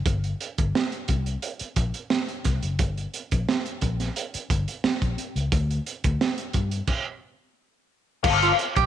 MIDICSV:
0, 0, Header, 1, 7, 480
1, 0, Start_track
1, 0, Key_signature, -2, "minor"
1, 0, Tempo, 681818
1, 41, Time_signature, 4, 2, 24, 8
1, 6238, End_track
2, 0, Start_track
2, 0, Title_t, "Tenor saxophone"
2, 0, Program_c, 0, 66
2, 5933, Note_on_c, 0, 65, 92
2, 5999, Note_off_c, 0, 65, 0
2, 6172, Note_on_c, 0, 67, 97
2, 6238, Note_off_c, 0, 67, 0
2, 6238, End_track
3, 0, Start_track
3, 0, Title_t, "Clean electric guitar"
3, 0, Program_c, 1, 27
3, 5795, Note_on_c, 1, 58, 85
3, 5800, Note_on_c, 1, 65, 104
3, 5804, Note_on_c, 1, 69, 107
3, 6019, Note_off_c, 1, 58, 0
3, 6021, Note_off_c, 1, 65, 0
3, 6023, Note_off_c, 1, 69, 0
3, 6238, End_track
4, 0, Start_track
4, 0, Title_t, "Fingered electric bass"
4, 0, Program_c, 2, 33
4, 42, Note_on_c, 2, 31, 85
4, 228, Note_off_c, 2, 31, 0
4, 415, Note_on_c, 2, 31, 85
4, 500, Note_off_c, 2, 31, 0
4, 767, Note_on_c, 2, 36, 85
4, 952, Note_off_c, 2, 36, 0
4, 1243, Note_on_c, 2, 34, 70
4, 1342, Note_off_c, 2, 34, 0
4, 1729, Note_on_c, 2, 36, 75
4, 1826, Note_off_c, 2, 36, 0
4, 1850, Note_on_c, 2, 30, 76
4, 1966, Note_off_c, 2, 30, 0
4, 1966, Note_on_c, 2, 31, 85
4, 2152, Note_off_c, 2, 31, 0
4, 2339, Note_on_c, 2, 34, 85
4, 2424, Note_off_c, 2, 34, 0
4, 2695, Note_on_c, 2, 34, 93
4, 2877, Note_off_c, 2, 34, 0
4, 3169, Note_on_c, 2, 31, 81
4, 3267, Note_off_c, 2, 31, 0
4, 3534, Note_on_c, 2, 34, 85
4, 3621, Note_off_c, 2, 34, 0
4, 3771, Note_on_c, 2, 37, 76
4, 3859, Note_off_c, 2, 37, 0
4, 3887, Note_on_c, 2, 38, 107
4, 4072, Note_off_c, 2, 38, 0
4, 4256, Note_on_c, 2, 38, 79
4, 4342, Note_off_c, 2, 38, 0
4, 4606, Note_on_c, 2, 43, 72
4, 4791, Note_off_c, 2, 43, 0
4, 5803, Note_on_c, 2, 31, 115
4, 5987, Note_off_c, 2, 31, 0
4, 6170, Note_on_c, 2, 34, 93
4, 6238, Note_off_c, 2, 34, 0
4, 6238, End_track
5, 0, Start_track
5, 0, Title_t, "Muted clean electric guitar strokes"
5, 6163, Note_on_c, 9, 29, 46
5, 6234, Note_off_c, 9, 29, 0
5, 6238, End_track
6, 0, Start_track
6, 0, Title_t, "Muted fingered electric bass strokes"
6, 1133, Note_on_c, 9, 29, 45
6, 1204, Note_off_c, 9, 29, 0
6, 3061, Note_on_c, 9, 29, 44
6, 3131, Note_off_c, 9, 29, 0
6, 3408, Note_on_c, 9, 29, 50
6, 3479, Note_off_c, 9, 29, 0
6, 6238, End_track
7, 0, Start_track
7, 0, Title_t, "Drums"
7, 40, Note_on_c, 9, 36, 115
7, 40, Note_on_c, 9, 42, 84
7, 110, Note_off_c, 9, 36, 0
7, 111, Note_off_c, 9, 42, 0
7, 167, Note_on_c, 9, 42, 41
7, 238, Note_off_c, 9, 42, 0
7, 285, Note_on_c, 9, 42, 70
7, 356, Note_off_c, 9, 42, 0
7, 409, Note_on_c, 9, 42, 50
7, 412, Note_on_c, 9, 36, 88
7, 479, Note_off_c, 9, 42, 0
7, 482, Note_off_c, 9, 36, 0
7, 530, Note_on_c, 9, 38, 108
7, 601, Note_off_c, 9, 38, 0
7, 648, Note_on_c, 9, 42, 49
7, 718, Note_off_c, 9, 42, 0
7, 760, Note_on_c, 9, 42, 79
7, 766, Note_on_c, 9, 36, 84
7, 830, Note_off_c, 9, 42, 0
7, 836, Note_off_c, 9, 36, 0
7, 888, Note_on_c, 9, 42, 46
7, 959, Note_off_c, 9, 42, 0
7, 1002, Note_on_c, 9, 42, 82
7, 1073, Note_off_c, 9, 42, 0
7, 1122, Note_on_c, 9, 42, 54
7, 1193, Note_off_c, 9, 42, 0
7, 1240, Note_on_c, 9, 42, 80
7, 1242, Note_on_c, 9, 36, 81
7, 1310, Note_off_c, 9, 42, 0
7, 1313, Note_off_c, 9, 36, 0
7, 1366, Note_on_c, 9, 42, 49
7, 1436, Note_off_c, 9, 42, 0
7, 1480, Note_on_c, 9, 38, 111
7, 1551, Note_off_c, 9, 38, 0
7, 1608, Note_on_c, 9, 42, 44
7, 1679, Note_off_c, 9, 42, 0
7, 1721, Note_on_c, 9, 42, 64
7, 1722, Note_on_c, 9, 38, 27
7, 1727, Note_on_c, 9, 36, 85
7, 1792, Note_off_c, 9, 42, 0
7, 1793, Note_off_c, 9, 38, 0
7, 1798, Note_off_c, 9, 36, 0
7, 1848, Note_on_c, 9, 42, 53
7, 1919, Note_off_c, 9, 42, 0
7, 1963, Note_on_c, 9, 42, 86
7, 1965, Note_on_c, 9, 36, 105
7, 2033, Note_off_c, 9, 42, 0
7, 2036, Note_off_c, 9, 36, 0
7, 2095, Note_on_c, 9, 42, 43
7, 2165, Note_off_c, 9, 42, 0
7, 2208, Note_on_c, 9, 42, 66
7, 2278, Note_off_c, 9, 42, 0
7, 2333, Note_on_c, 9, 42, 55
7, 2338, Note_on_c, 9, 36, 86
7, 2404, Note_off_c, 9, 42, 0
7, 2408, Note_off_c, 9, 36, 0
7, 2454, Note_on_c, 9, 38, 98
7, 2525, Note_off_c, 9, 38, 0
7, 2574, Note_on_c, 9, 42, 51
7, 2645, Note_off_c, 9, 42, 0
7, 2685, Note_on_c, 9, 42, 77
7, 2691, Note_on_c, 9, 36, 84
7, 2756, Note_off_c, 9, 42, 0
7, 2762, Note_off_c, 9, 36, 0
7, 2816, Note_on_c, 9, 42, 49
7, 2817, Note_on_c, 9, 38, 34
7, 2886, Note_off_c, 9, 42, 0
7, 2887, Note_off_c, 9, 38, 0
7, 2930, Note_on_c, 9, 42, 88
7, 3000, Note_off_c, 9, 42, 0
7, 3055, Note_on_c, 9, 42, 57
7, 3125, Note_off_c, 9, 42, 0
7, 3168, Note_on_c, 9, 36, 95
7, 3171, Note_on_c, 9, 42, 75
7, 3239, Note_off_c, 9, 36, 0
7, 3241, Note_off_c, 9, 42, 0
7, 3294, Note_on_c, 9, 42, 56
7, 3364, Note_off_c, 9, 42, 0
7, 3407, Note_on_c, 9, 38, 114
7, 3478, Note_off_c, 9, 38, 0
7, 3533, Note_on_c, 9, 36, 76
7, 3534, Note_on_c, 9, 42, 39
7, 3603, Note_off_c, 9, 36, 0
7, 3604, Note_off_c, 9, 42, 0
7, 3648, Note_on_c, 9, 42, 61
7, 3718, Note_off_c, 9, 42, 0
7, 3774, Note_on_c, 9, 42, 55
7, 3844, Note_off_c, 9, 42, 0
7, 3886, Note_on_c, 9, 36, 119
7, 3887, Note_on_c, 9, 42, 81
7, 3957, Note_off_c, 9, 36, 0
7, 3957, Note_off_c, 9, 42, 0
7, 4016, Note_on_c, 9, 42, 44
7, 4087, Note_off_c, 9, 42, 0
7, 4129, Note_on_c, 9, 42, 65
7, 4199, Note_off_c, 9, 42, 0
7, 4252, Note_on_c, 9, 42, 53
7, 4255, Note_on_c, 9, 36, 90
7, 4322, Note_off_c, 9, 42, 0
7, 4325, Note_off_c, 9, 36, 0
7, 4372, Note_on_c, 9, 38, 98
7, 4443, Note_off_c, 9, 38, 0
7, 4489, Note_on_c, 9, 42, 51
7, 4560, Note_off_c, 9, 42, 0
7, 4600, Note_on_c, 9, 42, 75
7, 4607, Note_on_c, 9, 36, 86
7, 4670, Note_off_c, 9, 42, 0
7, 4677, Note_off_c, 9, 36, 0
7, 4727, Note_on_c, 9, 42, 51
7, 4797, Note_off_c, 9, 42, 0
7, 4839, Note_on_c, 9, 49, 81
7, 4841, Note_on_c, 9, 36, 88
7, 4909, Note_off_c, 9, 49, 0
7, 4912, Note_off_c, 9, 36, 0
7, 5799, Note_on_c, 9, 49, 116
7, 5802, Note_on_c, 9, 36, 110
7, 5870, Note_off_c, 9, 49, 0
7, 5872, Note_off_c, 9, 36, 0
7, 5930, Note_on_c, 9, 42, 50
7, 6000, Note_off_c, 9, 42, 0
7, 6046, Note_on_c, 9, 42, 75
7, 6117, Note_off_c, 9, 42, 0
7, 6168, Note_on_c, 9, 42, 61
7, 6171, Note_on_c, 9, 36, 98
7, 6238, Note_off_c, 9, 36, 0
7, 6238, Note_off_c, 9, 42, 0
7, 6238, End_track
0, 0, End_of_file